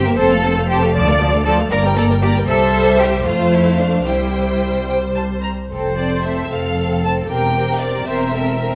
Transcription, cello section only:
0.00 0.17 G4 medium
0.18 0.68 A4 loud
0.69 0.94 G4 medium
0.95 1.44 D5 medium
1.45 1.53 A4 medium
1.71 1.79 A#4 medium
1.97 2.05 A4 medium
2.22 2.30 G4 medium
2.48 2.99 A4 medium
3.00 3.26 G4 medium
3.26 3.53 F4 medium
3.52 3.80 E4 medium
3.79 4.06 D4 medium
4.06 4.88 E4 medium
5.70 6.41 F2 soft
6.50 7.20 F2 soft
7.30 7.98 E2 soft
8.06 8.75 E2 soft

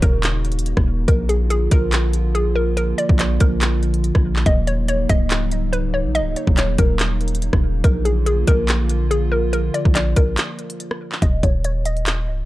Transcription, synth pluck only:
0.02 1.04 A#4 medium
1.08 1.28 A#4 medium
1.29 1.49 G#4 medium
1.50 1.70 G#4 medium
1.72 2.31 A#4 medium
2.35 2.55 G#4 medium
2.56 2.76 A#4 medium
2.77 2.97 A#4 medium
2.98 3.18 D5 medium
3.19 3.39 D5 medium
3.41 4.42 A#4 medium
4.46 4.66 D#5 medium
4.67 4.87 C#5 medium
4.88 5.08 C#5 medium
5.09 5.69 D#5 loud
5.73 5.93 B4 medium
5.94 6.14 C#5 medium
6.15 6.35 D#5 loud
6.37 6.56 C#5 medium
6.57 6.77 C#5 medium
6.78 7.80 A#4 medium
7.84 8.04 A#4 medium
8.05 8.25 G#4 medium
8.26 8.46 G#4 medium
8.48 9.07 A#4 medium
9.11 9.31 G#4 medium
9.32 9.52 A#4 medium
9.53 9.73 A#4 medium
9.74 9.94 D5 medium
9.95 10.15 D5 medium
10.16 11.18 A#4 medium
11.22 11.42 D#5 medium
11.43 11.63 C#5 medium
11.65 11.84 C#5 medium
11.86 12.45 D#5 loud

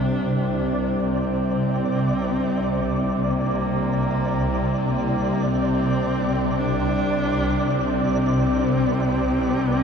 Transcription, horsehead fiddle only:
0.00 1.02 D4 medium
1.00 3.14 C4 loud
3.15 3.25 C4 medium
3.24 4.90 A#3 medium
4.90 5.49 A#3 medium
5.47 6.60 C4 medium
6.59 7.72 D4 medium
7.71 9.83 C4 medium

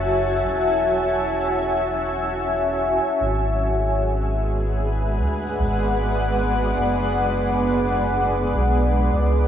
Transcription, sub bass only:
0.00 0.40 F#1 medium
0.44 2.97 E1 medium
3.20 5.20 G#1 medium
5.18 5.59 D2 medium
5.57 6.72 G#1 medium
6.76 8.53 F#1 medium
8.54 9.09 B1 medium
9.13 9.48 C#2 medium

